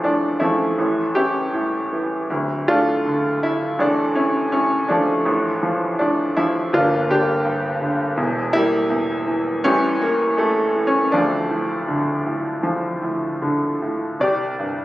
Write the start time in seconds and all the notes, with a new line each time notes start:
Already playing: A1 A2 F3 A3 D4
0.03 A2 D4
0.40 F3 A3 C#4 E4
0.78 A1 A2
1.15 E3 C#4 E4 G4
1.54 A2
1.93 E3
2.30 D1 D2
2.68 A2 A3 D4 F4
3.05 D3
3.42 A2 E4
3.79 A1 A2 A3 D4
4.15 C#4 E4
4.52 A2 C#4
4.89 F3 A3 D4
5.25 A1 A2
5.63 F3
5.99 A2 D4
6.37 F3 E4
6.73 G1 G2 A#3 D4 F4
7.09 D3 A#3 D4 G4
7.45 G2
7.81 D3
8.17 E1 E2
8.53 E3 G3 A#3 E4
8.90 E2
9.27 E3
9.64 A1 A2 E3 G3 C#4
10.01 E3 A#3
10.38 A2 A3
10.76 E3
10.87 C#4
11.12 D1 D2 F3 A3 D4
11.50 A2
11.88 D3
12.26 A2
12.63 F3
13.02 A2
13.42 D3
13.82 A2
14.20 C2 G4 D5
14.59 G2